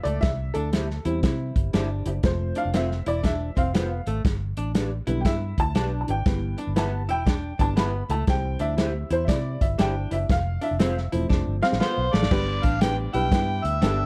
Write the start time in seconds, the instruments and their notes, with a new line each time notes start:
0.03 fingered electric bass C#2, hollow-body jazz guitar A3, upright piano D5, closed hi-hat
0.21 fingered electric bass C2, upright piano E5, kick, snare, closed hi-hat
0.54 fingered electric bass D2, hollow-body jazz guitar D4, upright piano A4, closed hi-hat
0.72 clean electric guitar E4 G4 C5 E5, snare, closed hi-hat
0.90 snare
1.05 fingered electric bass E2, upright piano E3 G3 C4, hollow-body jazz guitar E4, closed hi-hat
1.23 fingered electric bass C3, hollow-body jazz guitar E4, kick, snare, closed hi-hat
1.56 fingered electric bass G1, kick, closed hi-hat
1.73 fingered electric bass G1, hollow-body jazz guitar D4, clean electric guitar E4 G4 C5 E5, snare, closed hi-hat
2.06 fingered electric bass F#1, clean electric guitar E4 G4 C5 E5, closed hi-hat
2.23 fingered electric bass F1, upright piano F3 A3 C4 C5, kick, snare, closed hi-hat
2.55 hollow-body jazz guitar D4, upright piano F5, closed hi-hat
2.65 fingered electric bass F1
2.73 hollow-body jazz guitar C4, clean electric guitar F4 A4 C5 F5, upright piano E5, snare, closed hi-hat
2.91 snare
3.06 fingered electric bass E1, hollow-body jazz guitar E4, upright piano D5, closed hi-hat
3.23 hollow-body jazz guitar D4, upright piano E5, kick, snare, closed hi-hat
3.57 fingered electric bass F1, hollow-body jazz guitar C4, upright piano F5, kick, closed hi-hat
3.74 hollow-body jazz guitar B3, clean electric guitar F4 A4 C5 F5, snare, closed hi-hat
4.07 fingered electric bass G#1, hollow-body jazz guitar A3, closed hi-hat
4.25 fingered electric bass G1, kick, snare, closed hi-hat
4.57 fingered electric bass A1, hollow-body jazz guitar D4, closed hi-hat
4.74 clean electric guitar D4 G4 B4 D5, snare, closed hi-hat
5.07 fingered electric bass B1, upright piano D3 G3 B3, hollow-body jazz guitar E4, closed hi-hat
5.21 upright piano G5
5.25 fingered electric bass G2, hollow-body jazz guitar E4, upright piano E5, kick, snare, closed hi-hat
5.58 fingered electric bass D2, upright piano A5, kick, closed hi-hat
5.75 fingered electric bass B1, clean electric guitar D4 G4 B4 D5, hollow-body jazz guitar D4, snare, closed hi-hat
6.01 upright piano A5
6.07 fingered electric bass G#1, clean electric guitar D4 G4 B4 D5, upright piano G5, closed hi-hat
6.26 fingered electric bass G1, upright piano E3 G3 B3, kick, snare, closed hi-hat
6.58 hollow-body jazz guitar D4, closed hi-hat
6.67 fingered electric bass G1
6.76 hollow-body jazz guitar B3, clean electric guitar E4 G4 B4 E5, upright piano A5, snare, closed hi-hat
7.09 fingered electric bass E1, hollow-body jazz guitar E4, upright piano G5, closed hi-hat
7.26 hollow-body jazz guitar D4, kick, snare, closed hi-hat
7.59 fingered electric bass G1, upright piano E3 G3 B3 A5, hollow-body jazz guitar D4, kick, closed hi-hat
7.76 hollow-body jazz guitar B3, clean electric guitar E4 G4 B4 E5, upright piano B5, snare, closed hi-hat
8.09 fingered electric bass C#2, hollow-body jazz guitar A3, upright piano A5, closed hi-hat
8.27 fingered electric bass C2, upright piano E3 G3 C4 G5, kick, snare, closed hi-hat
8.59 fingered electric bass D2, hollow-body jazz guitar D4, upright piano E5, closed hi-hat
8.77 clean electric guitar E4 G4 C5 E5, snare, closed hi-hat
9.10 fingered electric bass E2, hollow-body jazz guitar E4, upright piano C5, closed hi-hat
9.25 fingered electric bass C3, hollow-body jazz guitar E4, upright piano D5 E5, kick
9.29 snare, closed hi-hat
9.61 fingered electric bass G1, upright piano E5, kick, closed hi-hat
9.78 fingered electric bass G1, hollow-body jazz guitar D4, clean electric guitar E4 G4 C5 E5, upright piano G5, snare, closed hi-hat
10.11 fingered electric bass F#1, clean electric guitar E4 G4 C5 E5, upright piano E5, closed hi-hat
10.29 fingered electric bass F1, upright piano F5, kick, snare, closed hi-hat
10.61 hollow-body jazz guitar D4, upright piano E5, closed hi-hat
10.71 fingered electric bass F1
10.79 hollow-body jazz guitar C4, clean electric guitar F4 A4 C5 F5, snare, closed hi-hat
10.97 snare
11.12 fingered electric bass E1, upright piano F3 A3 C4, hollow-body jazz guitar E4, closed hi-hat
11.29 fingered electric bass F1, hollow-body jazz guitar D4, kick, snare
11.47 fingered electric bass G1
11.62 hollow-body jazz guitar C4, upright piano F5, snare
11.72 fingered electric bass A1, snare
11.80 hollow-body jazz guitar B3, clean electric guitar F4 A4 C5 F5, vibraphone C5, harmonica C5, upright piano F5, snare
11.98 fingered electric bass B1
12.13 fingered electric bass A1, hollow-body jazz guitar A3, vibraphone D5, harmonica D5, snare
12.22 fingered electric bass G#1, snare
12.31 fingered electric bass G1, upright piano G3 B3 D4 G4 B4, kick, snare, crash
12.63 fingered electric bass A1, hollow-body jazz guitar D4, vibraphone F5, harmonica F5, kick, closed hi-hat
12.81 upright piano G3 B3 D4 G4 B4, clean electric guitar D4 G4 B4 G5, harmonica G5, vibraphone G5, snare, closed hi-hat
13.13 fingered electric bass B1, upright piano G3 B3 D4 G4 B4, hollow-body jazz guitar E4, harmonica G5, vibraphone G5, closed hi-hat
13.32 fingered electric bass G2, upright piano G3 B3 D4 G4 B4, hollow-body jazz guitar E4, kick, snare, closed hi-hat
13.63 fingered electric bass D2, vibraphone E5, harmonica E5, closed hi-hat
13.81 fingered electric bass G1, upright piano G3 B3 D4 G4 A4, clean electric guitar D4 G4 B4 G5, hollow-body jazz guitar D4, snare, closed hi-hat